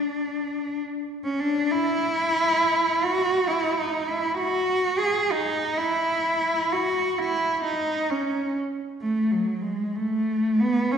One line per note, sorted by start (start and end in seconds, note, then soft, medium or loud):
0.00 0.76 D4 loud
1.24 1.39 C#4 medium
1.40 1.70 D4 medium
1.71 3.06 E4 loud
3.05 3.49 F#4 loud
3.47 3.78 E4 loud
3.79 4.09 D#4 medium
4.07 4.39 E4 medium
4.38 4.98 F#4 loud
4.99 5.31 G#4 medium
5.31 5.78 D#4 medium
5.77 6.73 E4 loud
6.72 7.20 F#4 medium
7.18 7.65 E4 medium
7.64 8.09 D#4 medium
8.10 8.56 C#4 medium
9.01 9.31 A3 medium
9.31 9.63 F#3 medium
9.62 9.95 G#3 medium
9.96 10.60 A3 medium
10.60 10.92 B3 medium
10.91 10.98 C#4 medium